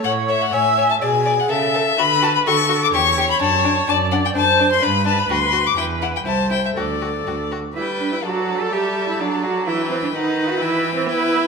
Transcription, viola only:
X:1
M:2/4
L:1/8
Q:1/4=126
K:A
V:1 name="Viola"
c2 e2 | G2 A2 | B2 A2 | c4 |
[K:G] d2 c2 | B4 | B2 c2 | A3 z |
G,2 F,2 | G,2 F,2 | E,2 ^D,2 | E,2 E2 |]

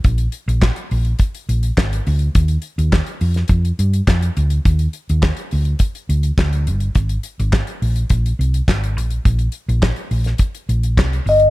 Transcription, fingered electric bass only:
X:1
M:4/4
L:1/16
Q:1/4=104
K:Eb
V:1 name="Fingered electric bass" clef=bass
B,,,2 z B,,,2 z B,,,2 z2 B,,,2 A,,,2 D,,2 | E,,2 z E,,2 z F,,2 F,,2 G,,2 F,,2 D,,2 | E,,2 z E,,2 z D,,2 z2 D,,2 D,,2 G,,,2 | A,,,2 z A,,,2 z B,,,2 B,,,2 C,,2 A,,,2 B,,,2 |
B,,,2 z B,,,2 z B,,,2 z2 B,,,2 C,,2 G,,,2 |]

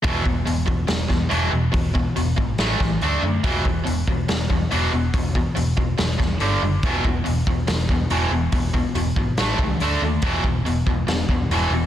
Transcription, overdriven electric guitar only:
X:1
M:4/4
L:1/8
Q:1/4=142
K:A
V:1 name="Overdriven electric guitar" clef=bass
[E,,B,,E,] [E,,B,,] [E,,B,,] [E,,B,,] [E,,B,,] [E,,B,,] [E,,B,,E,] [E,,B,,] | [E,,B,,] [E,,B,,] [E,,B,,] [E,,B,,] [A,,E,A,] [A,,E,] [D,A,D] [D,A,] | [E,,B,,E,] [E,,B,,] [E,,B,,] [E,,B,,] [E,,B,,] [E,,B,,] [E,,B,,E,] [E,,B,,] | [E,,B,,] [E,,B,,] [E,,B,,] [E,,B,,] [E,,B,,] [E,,B,,] [=G,,D,=G,] [G,,D,] |
[E,,B,,E,] [E,,B,,] [E,,B,,] [E,,B,,] [E,,B,,] [E,,B,,] [E,,B,,E,] [E,,B,,] | [E,,B,,] [E,,B,,] [E,,B,,] [E,,B,,] [A,,E,A,] [A,,E,] [D,A,D] [D,A,] | [E,,B,,E,] [E,,B,,] [E,,B,,] [E,,B,,] [E,,B,,] [E,,B,,] [E,,B,,E,] [E,,B,,] |]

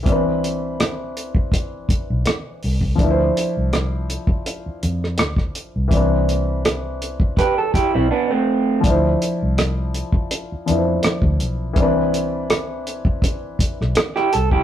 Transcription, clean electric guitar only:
X:1
M:4/4
L:1/16
Q:"Swing 16ths" 1/4=82
K:C
V:1 name="Clean electric guitar"
z16 | z16 | z8 [GB] A [EG] [CE] [B,D] [A,C]3 | z16 |
z12 z [EG] A [EG] |]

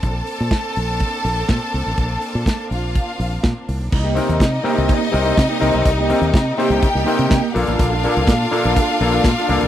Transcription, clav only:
X:1
M:4/4
L:1/8
Q:1/4=124
K:Cdor
V:1 name="Clav"
z8 | z8 | z [C,CEB] z [C,CEB] z [C,CEB] z [C,CEB] | z [C,CEB] z [C,CEc] z [C,CEB] z [B,,B,DA]- |
[B,,B,DA] [B,,B,DA] z [B,,B,DA] z [B,,B,DA] z [B,,B,DA] |]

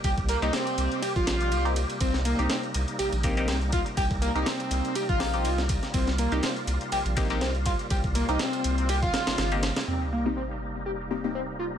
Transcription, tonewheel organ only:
X:1
M:4/4
L:1/8
Q:"Swing 16ths" 1/4=122
K:Cm
V:1 name="Tonewheel organ"
G8 | E8- | E8 | F8- |
F8 | E8 |]
V:2 name="Tonewheel organ" clef=bass
[C,G,B,]8- | [C,G,B,]8- | [C,G,B,]8- | [C,G,B,]8- |
[C,G,B,]8 | [C,G,B,]8 |]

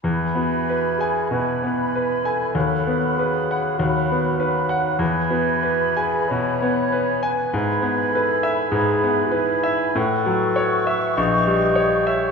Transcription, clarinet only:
X:1
M:4/4
L:1/8
Q:1/4=98
K:E
V:1 name="Clarinet"
E F2 G B3 A- | A2 G2 F2 D2 | E F2 G c3 B- | B z A2 G2 E2 |
A3 e d3 c |]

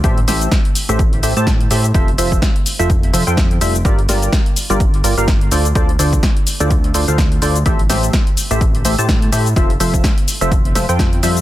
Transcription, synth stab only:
X:1
M:4/4
L:1/16
Q:"Swing 16ths" 1/4=126
K:Aphr
V:1 name="Synth stab"
[A,GAce] z [A,GAce]2 z3 [A,GAce] z2 [A,GAce] [A,GAca] z2 [GAce] z | [F,FAce] z [F,FAce]2 z3 [F,FAce] z2 [F,FAce] [F,FAcg] z2 [G,FAce] z | [G,FGBd] z [G,FGBd]2 z3 [G,FGBd] z2 [G,FGBd] [G,FGBf] z2 [D,FAcd] z | [D,FAcd] z [D,FAcd]2 z3 [D,FAcd] z2 [D,FAcd] [D,FAcf] z2 [FAcd] z |
[A,GAce] z [A,GAce]2 z3 [A,GAce] z2 [A,GAce] [A,GAca] z2 [GAce] z | [F,FAce] z [F,FAce]2 z3 [F,FAce] z2 [F,FAce] [F,FAcg] z2 [G,FAce] z |]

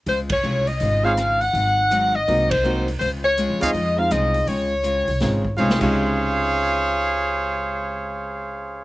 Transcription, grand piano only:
X:1
M:4/4
L:1/8
Q:"Swing" 1/4=163
K:Db
V:1 name="Grand piano"
z4 z [A,CEF] z2 | z4 [B,CEG] z [B,CEG] z | z3 [A,CEF] z [A,CEF]3 | z4 [A,CEF] z [A,CEF] [C,D,A,EF]- |
[C,D,A,EF]8- | [C,D,A,EF]8 |]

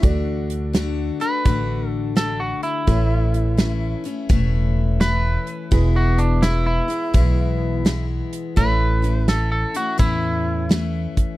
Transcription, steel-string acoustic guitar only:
X:1
M:4/4
L:1/8
Q:"Swing" 1/4=84
K:D
V:1 name="Steel-string acoustic guitar"
[D,A,DF]2 [D,A,DF] [A,DF] [D,A,DF]2 [D,A,DF]2 | [A,,E,A,CE]2 [E,A,CE] [A,CE] [A,,E,A,CE]2 [E,A,CE]2 | [E,,B,,E,^G,B,E]2 [E,G,B,E] [E,G,B,E] [E,,B,,E,G,B,E]2 [E,G,B,E]2 | [A,,E,A,CE] [A,CE] [E,A,CE] [A,CE] [A,,E,A,CE]2 [E,A,CE]2 |]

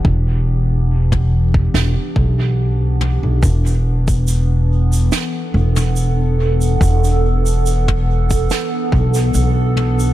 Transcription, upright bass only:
X:1
M:4/4
L:1/16
Q:"Swing 16ths" 1/4=71
K:Bphr
V:1 name="Upright bass" clef=bass
E,,,8 E,,, z B,,,4- B,,, B,,, | E,,,8 z2 E,,,6 | E,,,8 z2 B,,,2 B,,,4 |]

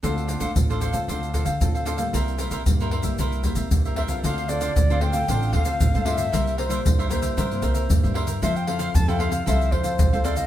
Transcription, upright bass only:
X:1
M:4/4
L:1/16
Q:1/4=114
K:Dm
V:1 name="Upright bass" clef=bass
D,,3 D,, A,,,3 D,, D,,3 D, D,,4 | C,,3 C,, G,,3 C,, C,,3 C, C,,4 | D,,4 D,,4 A,,,2 D,,2 A,,, G,,3 | C,,4 C,,4 G,,2 C,,2 G,, G,,3 |
F,,4 F,,4 C,,2 F,,2 C,, C,,3 |]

